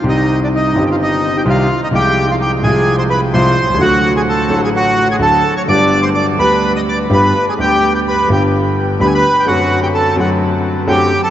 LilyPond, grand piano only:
\new Staff \with { instrumentName = "Grand piano" } { \clef bass \time 4/4 \key c \minor \tempo 4 = 128 <c, c ees g c' g'>4. <g,, g, ees g c' g'>4. <c, c ees g c' g'>8 r8 | <c, c f aes f'>4. <c, c f aes f'>4. <c, c f aes f'>8 r32 b,,32 c,32 des,32 | <d, d fis a fis'>4. <a,, a, d fis a fis'>4. <d, d fis a fis'>8 r8 | <g,, g, d g b g'>4. <d, d g b g'>4. <g,, g, d g b g'>8 r8 |
<d, d g b g'>4. <g,, g, d g b g'>4. <d, d g b g'>8 r8 | <fis, d fis a c' fis'>4. <fis, d fis a c' fis'>4. <fis, d fis a c' fis'>8 r8 | }